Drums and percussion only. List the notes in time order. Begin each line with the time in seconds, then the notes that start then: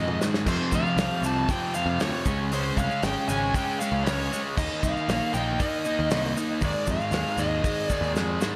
0.08 mid tom
0.21 snare, shaker
0.34 snare, shaker
0.47 kick, splash, crash, shaker
0.72 kick, shaker
0.86 shaker
0.98 snare, open hi-hat, shaker
1.24 shaker
1.48 kick, open hi-hat, shaker
1.74 shaker
2.00 snare, open hi-hat, shaker
2.25 kick, shaker
2.52 open hi-hat, shaker
2.77 kick, shaker
2.91 shaker
3.03 snare, open hi-hat, shaker
3.29 shaker
3.54 kick, open hi-hat, shaker
3.81 shaker
4.06 snare, open hi-hat, shaker
4.33 shaker
4.58 kick, crash, shaker
4.83 kick, shaker
4.97 shaker
5.09 snare, open hi-hat, shaker
5.34 shaker
5.60 kick, open hi-hat, shaker
5.85 shaker
6.11 snare, open hi-hat, shaker
6.37 shaker
6.61 kick, open hi-hat, shaker
6.87 kick, shaker
7.01 shaker
7.12 snare, open hi-hat, shaker
7.38 shaker
7.64 kick, open hi-hat, shaker
7.90 kick, shaker
8.03 shaker
8.16 snare, shaker
8.41 snare, shaker